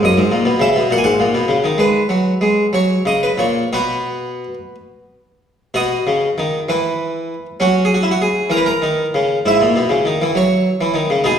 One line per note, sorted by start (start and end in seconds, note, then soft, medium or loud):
0.03 0.17 F#2 medium
0.03 0.63 D#5 medium
0.17 0.31 G#2 medium
0.32 0.46 A#2 medium
0.45 0.60 B2 medium
0.60 0.75 C#3 medium
0.60 0.91 E5 medium
0.76 0.90 B2 medium
0.91 1.05 A#2 medium
0.91 0.98 F#5 medium
0.98 1.05 G#5 medium
1.04 1.19 G#2 medium
1.04 1.69 F#5 loud
1.20 1.34 A#2 medium
1.34 1.49 B2 medium
1.48 1.64 C#3 medium
1.64 1.79 D#3 medium
1.78 2.01 G#3 medium
1.78 2.73 B4 medium
2.09 2.32 F#3 medium
2.41 2.64 G#3 medium
2.73 2.96 F#3 medium
2.73 3.02 C#5 medium
3.05 3.29 C#3 medium
3.05 3.23 D#5 medium
3.23 3.39 B4 medium
3.38 3.62 A#2 soft
3.38 3.67 C#5 medium
3.73 4.44 B2 soft
3.73 4.54 B3 soft
3.73 4.54 F#4 soft
3.73 4.75 B4 medium
5.74 5.97 B2 medium
5.74 6.63 F#4 soft
5.74 6.54 D#5 medium
6.07 6.28 C#3 medium
6.38 6.59 D#3 medium
6.69 7.34 E3 medium
6.69 7.46 B4 medium
7.60 8.25 F#3 medium
7.60 9.42 C#4 soft
7.60 7.85 F#4 medium
7.85 7.93 G#4 medium
7.94 8.02 F#4 medium
8.03 8.11 E4 medium
8.11 8.19 F#4 medium
8.22 8.51 G#4 medium
8.50 8.72 E3 medium
8.50 8.57 A#4 medium
8.57 8.64 B4 medium
8.66 9.47 A#4 medium
8.82 9.05 D#3 medium
9.14 9.37 C#3 medium
9.46 9.60 G#2 medium
9.46 10.32 E4 soft
9.46 10.24 E5 medium
9.61 9.75 A#2 medium
9.76 9.90 B2 medium
9.90 10.04 C#3 medium
10.05 10.20 D#3 medium
10.22 10.35 E3 medium
10.35 10.68 F#3 medium
10.35 11.27 C#5 medium
10.81 10.95 E3 medium
10.94 11.09 D#3 medium
11.10 11.25 C#3 medium
11.24 11.39 B2 medium
11.24 11.39 D#4 soft
11.24 11.39 G#4 medium